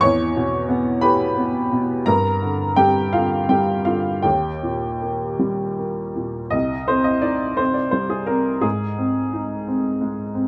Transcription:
0.01 E2 C#5 C#6
0.36 B2
0.69 B3
1.01 G4 B4 B5
1.37 B3
1.72 B2
2.06 G2 A#4 A#5
2.42 D3
2.76 G3 G4 G5
3.13 D3 F4 F5
3.49 G3 G4 G5
3.85 D3 F4 F5
4.22 D#2 G4 G5
4.63 A#2
5.02 A#3
5.39 G3
5.79 A#3
6.16 A#2
6.50 C2 D#5
6.88 C4 C5
7.04 D#5
7.22 D#4 D5
7.57 C4 C5
7.74 D5
7.91 G3 C5
8.10 G#4
8.26 C4 A#4
8.61 G#2 G#4
8.98 C4
9.33 D#4
9.67 C4
10.01 G#3
10.35 C4

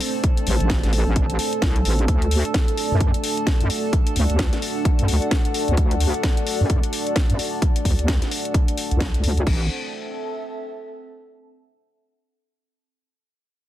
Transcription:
Already playing: A3 C4 D4 A4 C5 D5 A5
0.00 open hi-hat
0.24 kick, closed hi-hat
0.37 closed hi-hat
0.47 A1, open hi-hat
0.60 A1, closed hi-hat
0.70 kick, snare, closed hi-hat
0.83 A1, snare, closed hi-hat
0.93 open hi-hat
1.07 A1
1.16 kick, closed hi-hat
1.30 closed hi-hat
1.39 open hi-hat
1.53 closed hi-hat
1.62 C2, kick, snare, closed hi-hat
1.76 closed hi-hat
1.85 A1, open hi-hat
1.99 closed hi-hat
2.08 D2 D4 F#4 D5, kick, closed hi-hat
2.22 closed hi-hat
2.31 open hi-hat
2.45 closed hi-hat
2.54 kick, snare, closed hi-hat
2.63 F#5
2.68 closed hi-hat
2.77 open hi-hat
2.91 F#2
3.01 kick, closed hi-hat
3.14 closed hi-hat
3.24 open hi-hat
3.37 closed hi-hat
3.47 kick, snare, closed hi-hat
3.61 F#2, closed hi-hat
3.70 open hi-hat
3.93 kick, closed hi-hat
4.07 closed hi-hat
4.16 D2, open hi-hat
4.30 D2, closed hi-hat
4.39 kick, snare, closed hi-hat
4.53 snare, closed hi-hat
4.62 open hi-hat
4.85 kick, closed hi-hat
4.99 F#2, closed hi-hat
5.08 D2, open hi-hat
5.22 closed hi-hat
5.31 kick, snare, closed hi-hat
5.45 closed hi-hat
5.54 open hi-hat
5.68 D2, closed hi-hat
5.77 D2, kick, closed hi-hat
5.91 closed hi-hat
6.00 open hi-hat
6.14 closed hi-hat
6.23 kick, snare, closed hi-hat
6.37 closed hi-hat
6.47 open hi-hat
6.60 F#2
6.70 kick, closed hi-hat
6.83 closed hi-hat
6.93 open hi-hat
7.07 closed hi-hat
7.16 kick, snare, closed hi-hat
7.30 F#2, closed hi-hat
7.39 open hi-hat
7.62 kick, closed hi-hat
7.76 closed hi-hat
7.85 D2, kick, open hi-hat
7.99 D2, closed hi-hat
8.08 kick, snare, closed hi-hat
8.22 snare, closed hi-hat
8.31 open hi-hat
8.45 closed hi-hat
8.54 kick, closed hi-hat
8.68 closed hi-hat
8.78 open hi-hat
8.91 C2, closed hi-hat
9.00 kick, snare, closed hi-hat
9.14 closed hi-hat
9.24 D2, open hi-hat
9.37 closed hi-hat
9.46 A1 C4, kick, crash
9.55 A4
9.62 E5
9.68 A5

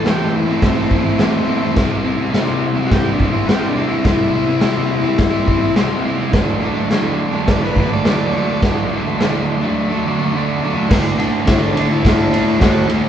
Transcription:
0.04 A2 E3 A3 C4 E4, snare, crash
0.09 G4
0.18 C4 E4
0.22 A3
0.37 E4
0.46 C4 E4
0.51 A3
0.62 C4 E4, kick, snare, crash
0.75 C4 E4
0.79 A3
0.90 E3 A3 C4, kick
0.94 E4
1.03 C4 E4
1.08 A3
1.18 A2 E3 A3 C4 E4, snare, crash
1.46 E3 A3 C4
1.50 E4
1.61 C4 E4
1.65 A3
1.74 C3 G3 C4 E4, kick, snare, crash
2.03 C3 G3 C4 E4
2.17 C4 E4
2.21 G3
2.31 C3 G3 C4, snare, crash
2.35 E4
2.46 G3 C4 E4
2.75 G3 C4 E4
2.87 F#4
2.91 G4, kick, snare, crash
3.03 C4 E4
3.07 G3
3.13 D4
3.18 C3 G3 C4, kick
3.22 E4
3.31 C4 E4
3.35 G3
3.45 C3 G3 C4 E4 F#4, snare, crash
3.51 G4
3.69 D4
3.75 C3 G3 C4
3.79 E4
3.88 C4 E4
3.92 G3
4.03 C3 G3 C4 D#4, kick, snare, crash
4.07 E4
4.32 C3 G3 C4 E4
4.45 G3 C4 E4
4.60 C3 G3 C4 E4, snare, crash
4.73 G3 C4 E4
5.01 G3 C4 E4
5.18 kick, snare, crash
5.30 G3 C4 E4
5.44 C3 G3 C4 E4, kick
5.61 G3 C4 E4
5.75 C3 G3 C4, snare, crash
5.79 E4
6.03 C3 G3 C4
6.07 E4
6.18 G3 C4 E4
6.32 D3 F#3 A3, kick, snare, crash
6.36 D4
6.60 D3 F#3 A3 D4
6.74 A3 D4
6.78 F#3
6.89 D3 F#3 A3, snare, crash
6.93 D4
7.04 F#3 A3 D4
7.32 A3 D4
7.36 F#3
7.48 D5, kick, snare, crash
7.61 A3 D4 B4
7.66 F#3
7.75 D3 F#3 A3, kick
7.80 D4
7.89 A3 D4 D5
7.94 F#3
8.05 D3 F#3 A3 D4, snare, crash
8.32 D3 F#3 C#5
8.36 A3 D4 D5
8.48 A3 D4
8.52 F#3
8.62 D3 F#3 A3, kick, snare, crash
8.66 D4
8.90 D3 F#3 A3
8.94 D4
9.05 A3 D4
9.09 F#3
9.19 D3 F#3 A3, snare, crash
9.23 D4
9.32 A3 D4
9.36 F#3
9.61 F#3 A3 D4
9.90 F#3 A3 D4
10.04 D3 F#3 A3
10.08 D4
10.19 A3 D4
10.23 F#3
10.33 D3 F#3 A3
10.37 D4
10.60 D3 F#3 A3
10.65 D4
10.74 F#3 A3 D4
10.89 D3 A3 D4, kick, snare, crash
11.17 D3 A3 D4, ride
11.45 D3 A3 D4 E4, kick, snare, ride
11.62 A4
11.73 D3 A3 D4, ride
11.91 E4
12.03 D3 A3 D4, kick, snare, ride
12.31 D3 A3 D4, ride
12.59 D3 A3 D4 F#4, kick, snare, ride
12.88 D3 A3 D4, ride

